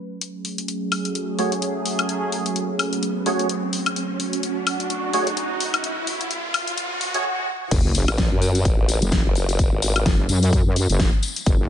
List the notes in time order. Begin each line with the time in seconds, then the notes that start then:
Already playing: F#3 A3 C#4 B4
0.21 F#3 A3 C#4 G#4, closed hi-hat, riser
0.45 open hi-hat
0.58 closed hi-hat
0.68 closed hi-hat
0.92 open hi-hat, high woodblock
1.05 closed hi-hat
1.15 closed hi-hat
1.39 A3 F#4 G#4 C#5, open hi-hat
1.52 closed hi-hat
1.62 closed hi-hat
1.86 open hi-hat
1.99 closed hi-hat, high woodblock
2.09 closed hi-hat
2.32 open hi-hat
2.46 closed hi-hat
2.56 closed hi-hat
2.79 open hi-hat, high woodblock
2.93 closed hi-hat
3.03 closed hi-hat
3.26 A3 F#4 G#4 C#5, open hi-hat
3.39 closed hi-hat
3.49 closed hi-hat
3.73 open hi-hat
3.86 closed hi-hat, high woodblock
3.96 F#4, closed hi-hat
4.20 open hi-hat
4.33 closed hi-hat
4.43 closed hi-hat
4.67 open hi-hat, high woodblock
4.80 closed hi-hat
4.90 closed hi-hat
5.13 A3 F#4 G#4 C#5, open hi-hat
5.27 closed hi-hat
5.37 closed hi-hat
5.60 open hi-hat
5.74 closed hi-hat, high woodblock
5.84 closed hi-hat
6.07 open hi-hat
6.21 closed hi-hat
6.31 closed hi-hat
6.54 open hi-hat, high woodblock
6.68 closed hi-hat
6.78 closed hi-hat, swell
7.01 open hi-hat
7.14 A3 F#4 G#4 C#5, closed hi-hat
7.71 F#1, kick, closed hi-hat, crash, tambourine, sub drop
7.95 open hi-hat, tambourine
8.08 A1, closed hi-hat, tambourine, high woodblock
8.18 kick, snare, closed hi-hat, tambourine
8.32 F#2
8.42 open hi-hat, tambourine
8.55 closed hi-hat, tambourine
8.65 A1, kick, closed hi-hat
8.89 open hi-hat, tambourine
9.02 F#1, closed hi-hat, tambourine
9.11 kick, snare, closed hi-hat, tambourine
9.25 F#1
9.35 open hi-hat, tambourine
9.49 closed hi-hat, tambourine
9.59 kick, closed hi-hat, tambourine
9.72 G#1
9.82 open hi-hat, tambourine
9.96 closed hi-hat, tambourine, high woodblock
10.06 F#1, kick, snare, closed hi-hat, tambourine
10.29 F#2, open hi-hat, tambourine
10.43 closed hi-hat, tambourine
10.53 kick, closed hi-hat, tambourine
10.66 F#2
10.76 open hi-hat, tambourine
10.89 F#1, closed hi-hat, tambourine
11.00 kick, snare, closed hi-hat
11.23 open hi-hat, tambourine
11.36 closed hi-hat, tambourine
11.46 F#1, kick, closed hi-hat, tambourine